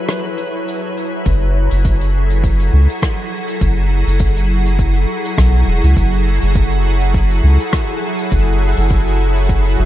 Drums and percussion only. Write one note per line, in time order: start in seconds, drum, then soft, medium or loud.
0.09 cross-stick medium
0.09 closed hi-hat medium
0.38 closed hi-hat soft
0.68 closed hi-hat medium
0.97 closed hi-hat soft
1.26 kick loud
1.26 closed hi-hat medium
1.71 closed hi-hat medium
1.85 kick loud
1.85 closed hi-hat medium
2.01 closed hi-hat medium
2.30 closed hi-hat medium
2.44 kick loud
2.44 closed hi-hat medium
2.60 closed hi-hat soft
2.90 closed hi-hat medium
3.02 kick loud
3.02 cross-stick loud
3.02 closed hi-hat medium
3.48 closed hi-hat medium
3.61 kick loud
3.61 closed hi-hat medium
4.08 closed hi-hat medium
4.19 kick loud
4.19 closed hi-hat medium
4.37 closed hi-hat soft
4.66 closed hi-hat medium
4.79 kick loud
4.79 closed hi-hat medium
4.95 closed hi-hat soft
5.25 closed hi-hat medium
5.38 kick loud
5.38 cross-stick medium
5.38 closed hi-hat medium
5.84 closed hi-hat medium
5.97 kick loud
5.97 closed hi-hat medium
6.42 closed hi-hat medium
6.55 kick loud
6.55 closed hi-hat medium
6.72 closed hi-hat soft
7.01 closed hi-hat medium
7.14 kick loud
7.14 closed hi-hat medium
7.31 closed hi-hat soft
7.60 closed hi-hat soft
7.73 kick loud
7.73 cross-stick medium
7.73 closed hi-hat medium
8.19 closed hi-hat medium
8.31 kick loud
8.31 closed hi-hat medium
8.77 closed hi-hat medium
8.90 kick loud
8.90 closed hi-hat medium
9.07 closed hi-hat soft
9.36 closed hi-hat soft
9.49 kick loud
9.49 closed hi-hat medium
9.65 closed hi-hat soft